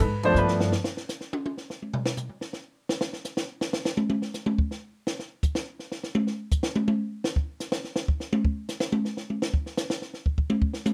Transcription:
0.00 upright bass G#2, grand piano B4, kick
0.23 grand piano F3 A3 B3 D4 C5, ride
0.34 upright bass G2, grand piano B4, hi-hat pedal, high tom
0.48 snare
0.61 snare
0.72 snare
0.84 snare
0.97 snare
1.09 snare, hi-hat pedal
1.21 snare
1.33 high tom
1.46 high tom
1.57 snare
1.70 snare
1.82 mid tom
1.94 floor tom
2.06 snare
2.17 floor tom, hi-hat pedal
2.29 floor tom
2.41 snare
2.53 snare
2.89 snare
3.01 snare
3.13 snare
3.25 snare, hi-hat pedal
3.37 snare
3.61 snare
3.73 snare
3.85 snare
3.97 mid tom
4.10 mid tom
4.22 snare
4.34 snare, hi-hat pedal
4.46 mid tom
4.58 kick
4.71 snare
5.07 snare
5.19 snare
5.43 kick, hi-hat pedal
5.55 snare
5.79 snare
5.92 snare
6.03 snare
6.15 mid tom
6.27 snare
6.51 kick, hi-hat pedal
6.63 snare
6.76 mid tom
6.88 mid tom
7.24 snare
7.36 kick
7.60 snare, hi-hat pedal
7.72 snare
7.84 snare
7.96 snare
8.08 kick
8.20 snare
8.33 mid tom
8.45 kick
8.69 snare, hi-hat pedal
8.80 snare
8.92 mid tom
9.05 snare
9.17 snare
9.30 mid tom
9.42 snare
9.54 kick
9.66 snare
9.77 snare, hi-hat pedal
9.90 snare
10.02 snare
10.14 snare
10.26 kick
10.38 kick
10.50 mid tom
10.62 kick
10.74 snare
10.86 hi-hat pedal, mid tom

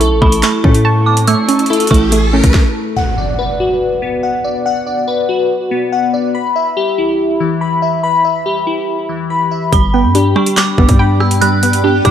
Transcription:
Already playing: synth pluck A3 C#4, synth bell A5, synth keys A5 C#6, riser
0.00 808-style bass B1, synth pluck E4, synth keys A4, closed hi-hat
0.11 808-style bass A1
0.22 808-style bass A1, synth pluck A3, synth keys E4, synth bell B5, kick
0.32 closed hi-hat
0.43 synth pluck A3, synth bell C#6, clap, closed hi-hat
0.64 808-style bass A2, synth keys A3, synth pluck C#4, kick
0.74 closed hi-hat
0.85 synth pluck A5, synth keys C#6
1.06 synth keys A5, synth bell D6
1.17 closed hi-hat
1.27 synth pluck A3, synth keys C#6, synth bell E6, closed hi-hat
1.48 synth pluck C#4, synth keys A5, closed hi-hat
1.59 closed hi-hat
1.66 synth keys A4, closed hi-hat
1.70 synth pluck E4, closed hi-hat
1.80 closed hi-hat
1.87 808-style bass A1, synth keys E4, synth bell C#6, kick, closed hi-hat
1.91 synth pluck A3, closed hi-hat
2.12 synth pluck A3, closed hi-hat
2.33 synth keys A3, synth pluck C#4
2.44 808-style bass A1, kick, closed hi-hat
2.54 kick, snare
2.96 synth keys F#5, impact
3.18 synth keys D5
3.39 synth keys B4
3.60 synth keys F#4
4.02 synth keys B3
4.23 synth keys F#5
4.44 synth keys D5
4.66 synth keys F#5
4.87 synth keys D5
5.08 synth keys B4
5.29 synth keys F#4
5.71 synth keys B3
5.92 synth keys F#5
6.13 synth keys D5
6.35 synth keys B5
6.56 synth keys E5
6.77 synth keys G4
6.98 synth keys E4
7.40 synth keys E3
7.61 synth keys B5
7.82 synth keys E5
8.03 synth keys B5
8.25 synth keys E5
8.46 synth keys G4
8.67 synth keys E4
9.09 synth keys E3
9.30 synth keys B5
9.51 synth keys E5
9.72 808-style bass G1, synth pluck G3, ambient pad B3 G4 D5 G5, synth keys B5, synth bell B5, kick, closed hi-hat
9.93 synth pluck B3, synth keys G5
10.04 808-style bass G2
10.15 synth pluck D4, synth keys G4, closed hi-hat
10.36 synth pluck G3, synth keys D4, synth bell C#6, cross-stick
10.46 closed hi-hat
10.57 synth pluck G3, synth bell D6, clap, closed hi-hat
10.78 808-style bass F#1, synth keys G3, synth pluck B3, kick
10.89 808-style bass G2, kick, closed hi-hat
10.99 synth pluck G5, synth keys B5
11.20 synth keys G5, synth bell E6, cross-stick
11.31 closed hi-hat
11.41 synth pluck G3, synth keys B5, synth bell F#6, closed hi-hat
11.63 synth pluck B3, synth keys G5, closed hi-hat
11.73 closed hi-hat
11.84 synth pluck D4, synth keys G4
12.05 808-style bass G2, synth pluck G3, synth keys D4, synth bell D6, kick, cross-stick, closed hi-hat

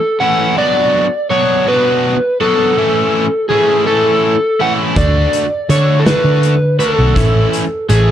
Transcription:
Already playing: overdriven electric guitar A4
0.20 overdriven electric guitar E3 A3 C#4 E4 F#5
0.57 overdriven electric guitar F#3 B3 D4 F#4 D5
1.30 overdriven electric guitar F#3 B3 D4 F#4 C#5
1.67 overdriven electric guitar F#3 B3 D4 F#4 B4
2.41 overdriven electric guitar F#3 B3 D4 F#4 A4
2.77 overdriven electric guitar E3 A3 C#4 E4
3.49 overdriven electric guitar E3 A3 C#4 E4 G#4
3.86 overdriven electric guitar E3 A3 C#4 E4 A4
4.60 overdriven electric guitar E3 A3 C#4 E4 F#5
4.96 picked electric bass D2, overdriven electric guitar D3 A3 D4 F#4 D5, kick, closed hi-hat
5.33 closed hi-hat
5.69 picked electric bass D3, overdriven electric guitar D3 A3 D4 F#4 C#5, closed hi-hat
6.00 overdriven electric guitar A4
6.05 overdriven electric guitar D3 A3 D4 F#4 B4, snare, closed hi-hat
6.24 picked electric bass D3
6.43 closed hi-hat
6.79 overdriven electric guitar D3 A3 D4 F#4 A4, closed hi-hat
6.99 picked electric bass B1
7.15 picked electric bass A1, overdriven electric guitar E3 A3 C#4 E4, kick, closed hi-hat
7.53 closed hi-hat
7.89 picked electric bass A1, overdriven electric guitar E3 A3 C#4 E4 G#4, closed hi-hat

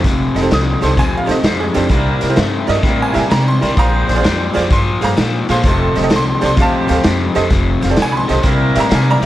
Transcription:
Already playing: honky-tonk piano F5
0.04 upright bass F1, overdriven electric guitar F2 C3, kick, snare, closed hi-hat
0.35 upright bass F1, honky-tonk piano A4 D#5, snare, closed hi-hat
0.41 honky-tonk piano D#4 G4 A4 C5
0.51 upright bass C2, overdriven electric guitar F2 D3, honky-tonk piano D#6, snare, closed hi-hat
0.81 upright bass C2, overdriven electric guitar F2 D3, honky-tonk piano D#4 G4 A4 C5 C6, snare, closed hi-hat
0.97 upright bass D2, overdriven electric guitar F2 C3, honky-tonk piano G#5, kick, snare, closed hi-hat
1.17 honky-tonk piano F5
1.26 upright bass D2, honky-tonk piano D#4 G4 A4 C5, snare, closed hi-hat
1.31 honky-tonk piano D#5
1.43 overdriven electric guitar F2 C3, upright bass F2, honky-tonk piano C5, snare, closed hi-hat
1.60 honky-tonk piano G#4
1.74 overdriven electric guitar F2 C3, upright bass F2, honky-tonk piano D4 D#4 G4 A4 C5, snare, closed hi-hat
1.89 upright bass C2, overdriven electric guitar C3 G3, horn section A#3 D4 E4 A#4, kick, snare, closed hi-hat
2.21 upright bass C2, honky-tonk piano A#4 D5, snare, closed hi-hat
2.29 honky-tonk piano E4 G4 A#4 C5
2.36 upright bass G2, overdriven electric guitar C3 A3, snare, closed hi-hat
2.67 upright bass G2, overdriven electric guitar C3 A3, honky-tonk piano E4 G4 A#4 D5 D#5, snare, closed hi-hat
2.83 upright bass A2, overdriven electric guitar C3 G3, horn section A#3 D4 E4 A#4, kick, snare, closed hi-hat
3.02 honky-tonk piano G#5
3.13 upright bass A2, honky-tonk piano E4 G4 A#4 E5, snare, closed hi-hat
3.30 overdriven electric guitar C3 G3, upright bass C3, honky-tonk piano A#5, snare, closed hi-hat
3.48 honky-tonk piano C6
3.61 upright bass C2, overdriven electric guitar C3 G3, honky-tonk piano E4 G4 A#4 D5, snare, closed hi-hat
3.77 upright bass A#1, overdriven electric guitar A#2 F3, horn section C4 D4 G#4 C5, honky-tonk piano F5 A#5, kick, snare, closed hi-hat
4.07 upright bass A#1, honky-tonk piano C5 D5, snare, closed hi-hat
4.15 honky-tonk piano F4 G#4 C5 D5
4.23 upright bass F2, overdriven electric guitar A#2 G3, snare, closed hi-hat
4.53 upright bass F2, overdriven electric guitar A#2 G3, honky-tonk piano F4 G#4 C5 D5, snare, closed hi-hat
4.70 upright bass G2, overdriven electric guitar A#2 F3, honky-tonk piano C6, kick, snare, closed hi-hat
5.01 upright bass G2, honky-tonk piano F4 G#4 C5 F5 A#5, snare, closed hi-hat
5.17 overdriven electric guitar A#2 F3, upright bass A#2, snare, closed hi-hat
5.49 overdriven electric guitar A#2 F3, upright bass A#2, honky-tonk piano F4 G#4 C5 F5 C6, snare, closed hi-hat
5.63 upright bass F1, overdriven electric guitar F2 C3, horn section A3 D#4 G4 A4, kick, snare, closed hi-hat
5.69 honky-tonk piano C6
5.95 upright bass F1, honky-tonk piano C5 D#5, snare, closed hi-hat
6.02 honky-tonk piano G4 A4 C5 D#5
6.10 upright bass C2, overdriven electric guitar F2 D3, snare, closed hi-hat
6.16 honky-tonk piano C6
6.41 upright bass C2, overdriven electric guitar F2 D3, honky-tonk piano G4 A4 C5 D5, snare, closed hi-hat
6.46 honky-tonk piano C6
6.57 upright bass D2, overdriven electric guitar F2 C3, horn section C4 D#4 G4 C5, honky-tonk piano F5, kick, snare, closed hi-hat
6.62 honky-tonk piano A5
6.88 upright bass D2, honky-tonk piano G4 A4 C5 F5, snare, closed hi-hat
7.03 overdriven electric guitar F2 C3, upright bass F2, snare, closed hi-hat
7.35 overdriven electric guitar F2 C3, upright bass F2, honky-tonk piano G4 A4 C5 D#5, snare, closed hi-hat
7.50 upright bass F1, overdriven electric guitar F2 C3, kick, snare, closed hi-hat
7.81 upright bass F1, honky-tonk piano C5 F5, snare, closed hi-hat
7.89 honky-tonk piano G4 A4 C5 D5
7.96 upright bass C2, overdriven electric guitar F2 D3, snare, closed hi-hat
8.02 honky-tonk piano G#5
8.12 honky-tonk piano B5
8.17 honky-tonk piano C6
8.27 upright bass B1, overdriven electric guitar F2 D3, honky-tonk piano G4 A4 C5 D#5, snare, closed hi-hat
8.42 upright bass C2, overdriven electric guitar C3 G3, horn section A#3 D4 E4 A#4, kick, snare, closed hi-hat
8.75 upright bass A2, honky-tonk piano G4 A#4 D5 E5, snare, closed hi-hat
8.80 honky-tonk piano A#5
8.90 overdriven electric guitar C3 G3, upright bass C3, snare, closed hi-hat
8.95 honky-tonk piano G#5
9.10 honky-tonk piano D5 A#5
9.22 overdriven electric guitar C3 G3, upright bass C3, closed hi-hat

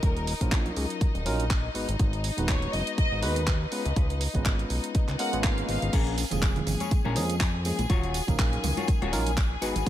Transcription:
Already playing: string section D#4 D#5, violin section A#4
0.03 analog synth bass D#1, kick, closed hi-hat
0.17 closed hi-hat
0.27 open hi-hat
0.41 analog synth bass A#1, tine electric piano F#3 C#4 D#4 F4 A#4, kick, closed hi-hat
0.52 kick, clap, closed hi-hat
0.66 closed hi-hat
0.76 analog synth bass C#2, open hi-hat
0.90 closed hi-hat
1.01 kick, closed hi-hat
1.15 analog synth bass D#1, closed hi-hat
1.25 analog synth bass A#1, tine electric piano F#3 C#4 D#4 F4 A#4, open hi-hat
1.40 closed hi-hat
1.50 kick, clap, closed hi-hat
1.74 analog synth bass G#1, tine electric piano G#3 B3 D#4 F#4 B4, open hi-hat
1.89 analog synth bass G#1, closed hi-hat
1.99 analog synth bass G#1, kick, closed hi-hat
2.13 closed hi-hat
2.24 open hi-hat
2.37 analog synth bass D#1, tine electric piano G#3 B3 D#4 F#4 B4, closed hi-hat
2.49 violin section C#5, kick, clap, closed hi-hat
2.62 closed hi-hat
2.73 analog synth bass F#1, violin section D#5, open hi-hat
2.87 closed hi-hat
2.98 analog synth bass G#1, violin section D#5, kick, closed hi-hat
3.12 analog synth bass G#1
3.22 analog synth bass D#2, tine electric piano G#3 B3 D#4 F#4 B4, violin section B4, open hi-hat
3.36 closed hi-hat
3.47 kick, clap, closed hi-hat
3.71 tine electric piano G#3 B3 C#4 F4 B4, violin section B4, open hi-hat
3.85 analog synth bass C#2, closed hi-hat
3.96 analog synth bass C#2, kick, closed hi-hat
4.10 closed hi-hat
4.21 open hi-hat
4.34 analog synth bass G#1, tine electric piano G#3 B3 C#4 F4 B4, kick, closed hi-hat
4.45 kick, clap, closed hi-hat
4.59 closed hi-hat
4.70 analog synth bass B1, open hi-hat
4.84 closed hi-hat
4.95 kick, closed hi-hat, swell
5.08 analog synth bass C#2, clap, closed hi-hat
5.19 tine electric piano G#3 B3 C#4 F4 A#4, violin section F#5, open hi-hat
5.32 analog synth bass G#1, tine electric piano G#3 B3 C#4 F4 B4, closed hi-hat
5.44 violin section F5, kick, clap, closed hi-hat
5.58 closed hi-hat
5.69 analog synth bass G#1, violin section F5, open hi-hat
5.82 analog synth bass G#1, closed hi-hat
5.93 analog synth bass A#1, clean electric guitar C#4 G#4 A#4, string section G#4 G#5, kick, closed hi-hat, crash, tambourine
6.07 closed hi-hat
6.18 open hi-hat, tambourine
6.30 analog synth bass F1, tine electric piano F3 G#3 A#3 C#4 G#4, closed hi-hat, tambourine, low conga
6.42 kick, clap, closed hi-hat, tambourine
6.56 muted clean electric guitar stroke, closed hi-hat, low conga
6.66 analog synth bass G#1, muted clean electric guitar stroke, open hi-hat, tambourine, high conga, low conga
6.80 clean electric guitar C#4 G#4 C#5, closed hi-hat, tambourine, high conga
6.91 analog synth bass A#1, kick, closed hi-hat, tambourine
7.05 analog synth bass A#1, clean electric guitar C#4 G#4 A#4, high conga
7.15 analog synth bass F2, tine electric piano F3 G#3 A#3 C#4 G#4, open hi-hat, tambourine
7.30 closed hi-hat, tambourine
7.40 muted clean electric guitar stroke, kick, clap, closed hi-hat, tambourine
7.54 muted clean electric guitar stroke
7.65 tine electric piano F3 G#3 A#3 C#4 G#4, open hi-hat, tambourine
7.79 analog synth bass A#1, muted clean electric guitar stroke, closed hi-hat, tambourine, high conga
7.90 analog synth bass D#1, clean electric guitar F4 F#4 C#5, kick, closed hi-hat, tambourine
8.03 closed hi-hat
8.14 open hi-hat, tambourine
8.27 analog synth bass A#1, tine electric piano F#3 C#4 D#4 A#4 F5, kick, closed hi-hat, tambourine, low conga
8.39 kick, clap, closed hi-hat, tambourine
8.52 muted clean electric guitar stroke, closed hi-hat
8.64 analog synth bass C#2, muted clean electric guitar stroke, open hi-hat, tambourine, high conga, low conga
8.77 clean electric guitar F4 F#4 C#5, closed hi-hat, tambourine, high conga
8.87 kick, closed hi-hat, tambourine
9.02 analog synth bass D#1, clean electric guitar F4 F#4 C#5, closed hi-hat, high conga
9.12 analog synth bass A#1, tine electric piano F#3 C#4 D#4 F4 A#4, open hi-hat, tambourine
9.26 closed hi-hat, tambourine
9.37 muted clean electric guitar stroke, kick, clap, closed hi-hat, tambourine
9.51 muted clean electric guitar stroke
9.61 analog synth bass G#1, tine electric piano G#3 B3 D#4 F#4 B4, clean electric guitar F#4 G#4 B4, open hi-hat, tambourine
9.76 analog synth bass G#1, closed hi-hat, tambourine, high conga

